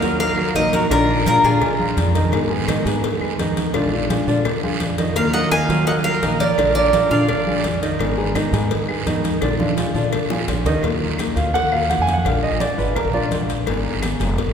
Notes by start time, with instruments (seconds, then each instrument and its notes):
Already playing: trumpet A#4, cuban tres F5
0.02 upright bass D#3, grand piano F#3 F#4 A#4, nylon-string guitar F#3 A#3 F4, cowbell, high conga, short guiro
0.19 trumpet A#4, cuban tres F5, muted nylon-string guitar stroke, cowbell, high conga, long guiro
0.37 grand piano F#3 F#4 A#4, high conga, claves
0.55 upright bass A#1, grand piano D#3 D#4 D#5, nylon-string guitar D#3 F#3 A#3 F4, trumpet A#4, cuban tres D#5, cowbell, high conga, short guiro
0.73 trumpet F#4, cuban tres A#4, cowbell, high conga, short guiro
0.90 upright bass A#1, grand piano D3 D4 D5, nylon-string guitar F3 G#3 D4 F4, trumpet F4, cuban tres A#4, cowbell, high conga, long guiro, claves
1.09 nylon-string guitar G#3 D4 F4, high conga
1.26 upright bass A#2, nylon-string guitar F3 G#3 D4 F4, grand piano F3 F4 G#4, trumpet F4, cuban tres A#4, cowbell, high conga, short guiro
1.44 upright bass A#2, grand piano D3 D4 D5, nylon-string guitar G#3 D4 F4, trumpet F4, cuban tres G#4, high conga, short guiro
1.61 muted nylon-string guitar stroke, cowbell, high conga, low conga, long guiro, claves
1.79 grand piano F3 F4 G#4, high conga
1.97 upright bass F2, nylon-string guitar F3 G#3 D4 F4, cowbell, high conga, short guiro
2.15 grand piano D#3 D#5, cowbell, high conga, short guiro
2.32 upright bass G#1, nylon-string guitar D#3 G#3 B3 D#4 G#4, cowbell, high conga, long guiro, claves
2.50 grand piano G#3 G#4 B4, nylon-string guitar G#3 B3 D#4 G#4, high conga
2.67 upright bass G#2, grand piano D#3 D#4 D#5, nylon-string guitar G#3 B3 D#4 G#4, cowbell, high conga, short guiro, claves
2.85 upright bass G#2, grand piano G#3 G#4 B4, nylon-string guitar G#3 B3 D#4 G#4, cowbell, short guiro
3.03 muted nylon-string guitar stroke, cowbell, high conga, long guiro
3.21 grand piano G#3 G#4 B4, high conga, claves
3.38 upright bass D#2, grand piano D#3 D#4 D#5, nylon-string guitar G#3 B3 D#4 G#4, cowbell, high conga, short guiro
3.57 cowbell, high conga, short guiro
3.73 upright bass A#1, grand piano D3 D4 D5, nylon-string guitar F3 G#3 D4 F4, cowbell, high conga, long guiro, claves
3.92 nylon-string guitar G#3 D4 F4, high conga
4.09 upright bass A#2, grand piano F3 F4 G#4, nylon-string guitar F3 G#3 D4 F4, cowbell, high conga, short guiro
4.27 upright bass A#2, grand piano D3 D4 D5, nylon-string guitar G#3 D4 F4, high conga, short guiro
4.45 muted nylon-string guitar stroke, cowbell, high conga, low conga, long guiro, claves
4.63 grand piano F3 F4 G#4, high conga, low conga
4.80 upright bass F2, nylon-string guitar F3 G#3 D4 F4, cowbell, high conga, short guiro
4.98 grand piano D#3 D#5, cowbell, high conga, short guiro
5.15 upright bass D#2, nylon-string guitar D#3 F#3 A#3 F4, trumpet A#4, cuban tres F5, cowbell, high conga, long guiro, claves
5.33 grand piano F#3 F#4 A#4, nylon-string guitar F#3 A#3 F4, trumpet D#5, cuban tres F#5, high conga
5.51 nylon-string guitar D#3 F#3 A#3 F4, upright bass D#3, grand piano D#3 D#4 D#5, trumpet F5, cuban tres G#5, cowbell, high conga, short guiro, claves
5.69 upright bass D#3, grand piano F#3 F#4 A#4, nylon-string guitar F#3 A#3 F4, cowbell, high conga, short guiro
5.87 trumpet D#5, cuban tres F#5, muted nylon-string guitar stroke, cowbell, high conga, long guiro
6.04 grand piano F#3 F#4 A#4, trumpet A#4, cuban tres F5, high conga, claves
6.22 upright bass A#1, nylon-string guitar D#3 F#3 A#3 F4, grand piano D#3 D#4 D#5, cowbell, high conga, short guiro
6.40 trumpet A#4, cuban tres D5, cowbell, high conga, short guiro
6.57 upright bass A#1, grand piano D3 D4 D5, nylon-string guitar F3 G#3 D4 F4, cowbell, high conga, long guiro, claves
6.75 nylon-string guitar G#3 D4 F4, trumpet A#4, cuban tres D5, high conga
6.93 upright bass A#2, nylon-string guitar F3 G#3 D4 F4, grand piano F3 F4 G#4, cowbell, high conga, short guiro
7.10 upright bass A#2, grand piano D3 D4 D5, nylon-string guitar G#3 D4 F4, trumpet D5, cuban tres F5, high conga, short guiro
7.29 muted nylon-string guitar stroke, cowbell, high conga, low conga, long guiro, claves
7.47 grand piano F3 F4 G#4, high conga
7.64 upright bass F2, nylon-string guitar F3 G#3 D4 F4, cowbell, high conga, short guiro
7.82 grand piano D#3 D#5, cowbell, short guiro
7.99 upright bass G#1, nylon-string guitar D#3 G#3 B3 D#4 G#4, cowbell, high conga, long guiro, claves
8.18 grand piano G#3 G#4 B4, nylon-string guitar G#3 B3 D#4 G#4, high conga
8.35 upright bass G#2, grand piano D#3 D#4 D#5, nylon-string guitar G#3 B3 D#4 G#4, cowbell, high conga, short guiro, claves
8.53 upright bass G#2, grand piano G#3 G#4 B4, nylon-string guitar G#3 B3 D#4 G#4, cowbell, high conga, short guiro
8.71 muted nylon-string guitar stroke, cowbell, high conga, long guiro
8.89 grand piano G#3 G#4 B4, high conga, claves
9.06 upright bass D#2, grand piano D#3 D#4 D#5, nylon-string guitar G#3 B3 D#4 G#4, cowbell, high conga, short guiro
9.24 cowbell, high conga, short guiro
9.41 upright bass A#1, grand piano D3 D4 D5, nylon-string guitar F3 G#3 D4 F4, cowbell, high conga, long guiro, claves
9.59 nylon-string guitar G#3 D4 F4, high conga
9.77 upright bass A#2, nylon-string guitar F3 G#3 D4 F4, grand piano F3 F4 G#4, cowbell, low conga, short guiro
9.94 upright bass A#2, grand piano D3 D4 D5, nylon-string guitar G#3 D4 F4, short guiro
10.12 muted nylon-string guitar stroke, cowbell, long guiro, claves
10.30 grand piano F3 F4 G#4, high bongo
10.48 upright bass A#1, nylon-string guitar F3 G#3 D4 F4, cowbell, low bongo, low conga, short guiro
10.65 upright bass D2, grand piano D#3 D#4 D#5, cowbell, low bongo, low conga, short guiro
10.82 upright bass D#2, nylon-string guitar D#3 F#3 A#3 F4, cowbell, high conga, long guiro, claves
11.02 high conga
11.10 upright bass D#2
11.18 nylon-string guitar D#3 F#3 A#3 F4, cowbell, high conga, short guiro, claves
11.36 upright bass D2, nylon-string guitar F#3 A#3 F4, grand piano F5, cowbell, high conga, short guiro
11.54 grand piano F#5, muted nylon-string guitar stroke, cowbell, high conga, long guiro
11.63 upright bass D#2
11.72 nylon-string guitar F#3 A#3 F4, grand piano F5, high conga, claves
11.89 nylon-string guitar D#3 F#3 A#3 F4, grand piano F#5, cowbell, high conga, short guiro
11.99 upright bass F2, grand piano G#5
12.07 cowbell, high conga, short guiro
12.13 grand piano F#5
12.25 upright bass A#1, nylon-string guitar F3 G#3 D4 F4, grand piano F5, cowbell, high conga, long guiro, claves
12.43 grand piano D#5, high conga
12.52 upright bass A#1
12.60 nylon-string guitar F3 G#3 D4 F4, grand piano D5, cowbell, high conga, short guiro
12.78 upright bass G#1, nylon-string guitar G#3 D4 F4, grand piano B4, high conga, short guiro
12.96 grand piano A#4, muted nylon-string guitar stroke, cowbell, high conga, low conga, long guiro, claves
13.05 upright bass A#1
13.13 nylon-string guitar G#3 D4 F4, grand piano D5, high conga, low conga
13.31 nylon-string guitar F3 G#3 D4 F4, cowbell, high conga, short guiro
13.40 upright bass A#1
13.49 cowbell, short guiro
13.66 upright bass G#1, nylon-string guitar D#3 G#3 B3 D#4 G#4, cowbell, high conga, long guiro, claves
13.85 high conga
13.93 upright bass G#1
14.02 nylon-string guitar G#3 B3 D#4 G#4, cowbell, high conga, short guiro, claves
14.20 upright bass F1, nylon-string guitar G#3 B3 D#4 G#4, cowbell, high conga, short guiro
14.38 muted nylon-string guitar stroke, cowbell, high conga, long guiro
14.46 upright bass G#1